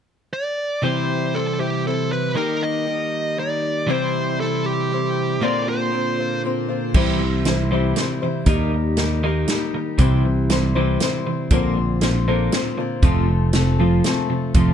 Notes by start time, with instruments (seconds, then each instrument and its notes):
0.33 lead electric guitar D5
0.82 steel-string acoustic guitar C3 E3 G3 C4 E4 C5, clean electric guitar C3 E3 G3 C4 G4, lead electric guitar C5
1.34 steel-string acoustic guitar G3 C4 E4 C5, lead electric guitar A4
1.59 steel-string acoustic guitar G3 C4 E4 C5, lead electric guitar G4
1.85 steel-string acoustic guitar G3 C4 E4 C5, lead electric guitar A4
2.12 lead electric guitar B4
2.35 clean electric guitar D#3 A#3 D#4 G4, steel-string acoustic guitar D#3 G3 D#4 G4 A#4, lead electric guitar A#4
2.63 lead electric guitar D#5
2.86 steel-string acoustic guitar G3 D#4 G4 A#4
3.36 steel-string acoustic guitar G3 D#4 G4 A#4, lead electric guitar D5
3.87 clean electric guitar C3 E3 G3 C4 E4, steel-string acoustic guitar C3 E3 G3 C4 E4 C5, lead electric guitar C5
4.40 steel-string acoustic guitar G3 C4 E4 C5, lead electric guitar A4
4.66 lead electric guitar G4
4.91 steel-string acoustic guitar G3 C4 E4 C5
5.41 clean electric guitar A#2 D3 A#3 C4 F4, steel-string acoustic guitar A#2 D3 A#3 C4 F4 C5, lead electric guitar D5
5.69 lead electric guitar C5
5.92 steel-string acoustic guitar A#3 C4 F4 C5
6.19 steel-string acoustic guitar A#3 C4 F4 C5
6.43 steel-string acoustic guitar A#3 C4 F4 C5
6.68 steel-string acoustic guitar A#3 C4 F4 C5
6.94 fingered electric bass C2, steel-string acoustic guitar C3 E3 G3 C4 E4 C5, clean electric guitar C3 E3 G3, kick, crash
7.20 clean electric guitar C3 E3
7.45 clean electric guitar C3 E3, steel-string acoustic guitar G3 C4 E4 C5, snare, closed hi-hat
7.71 clean electric guitar C3 E3 G3, steel-string acoustic guitar G3 C4 E4 C5
7.96 clean electric guitar C3 E3, steel-string acoustic guitar G3 C4 E4, snare, closed hi-hat
8.00 steel-string acoustic guitar C5
8.22 clean electric guitar C3 E3, steel-string acoustic guitar G3 C4 E4 C5
8.46 fingered electric bass D#2, clean electric guitar D#3 A#3 D#4, steel-string acoustic guitar D#3 G3 D#4 G4 A#4, kick, closed hi-hat
8.73 clean electric guitar D#3 A#3
8.97 clean electric guitar D#3 A#3, steel-string acoustic guitar G3 D#4 G4 A#4, snare, closed hi-hat
9.23 clean electric guitar D#3 A#3 D#4, steel-string acoustic guitar D#4 G4 A#4
9.48 clean electric guitar D#3 A#3, steel-string acoustic guitar G3 D#4 G4 A#4, snare, closed hi-hat
9.74 clean electric guitar D#3 A#3
9.98 fingered electric bass C2, clean electric guitar C3 E3 G3, steel-string acoustic guitar C3 E3 G3 C4 E4 C5, kick, closed hi-hat
10.25 clean electric guitar C3 E3
10.50 clean electric guitar C3 E3, steel-string acoustic guitar G3 C4 E4 C5, snare, closed hi-hat
10.75 clean electric guitar C3 E3 G3, steel-string acoustic guitar G3 C4 E4 C5
11.00 clean electric guitar C3 E3, steel-string acoustic guitar G3 C4 E4 C5, snare, closed hi-hat
11.27 clean electric guitar C3 E3
11.50 fingered electric bass A#1, clean electric guitar A#2 D3 A#3, steel-string acoustic guitar A#2 D3 A#3 C4 F4 C5, kick, closed hi-hat
11.77 clean electric guitar A#2 D3
12.01 clean electric guitar A#2 D3, steel-string acoustic guitar A#3 C4 F4 C5, snare, closed hi-hat
12.28 clean electric guitar A#2 D3 A#3, steel-string acoustic guitar A#3 C4 F4 C5
12.52 clean electric guitar A#2 D3, steel-string acoustic guitar A#3 C4 F4 C5, snare, closed hi-hat
12.77 clean electric guitar A#2 D3, steel-string acoustic guitar A#3 C4 F4 C5
13.02 fingered electric bass F1, clean electric guitar F2 C3 F3, steel-string acoustic guitar F3 A3 C4 F4 A4, kick, closed hi-hat
13.29 clean electric guitar F2 C3
13.53 clean electric guitar F2 C3, steel-string acoustic guitar A3 C4 F4 A4, snare, closed hi-hat
13.78 clean electric guitar F2 C3 F3, steel-string acoustic guitar C4 F4 A4
14.04 clean electric guitar F2 C3, steel-string acoustic guitar A3 C4 F4 A4, snare, closed hi-hat
14.30 clean electric guitar F2 C3
14.54 fingered electric bass F1, clean electric guitar F2 C3 F3, steel-string acoustic guitar F3 A3 C4 F4 A4, kick, closed hi-hat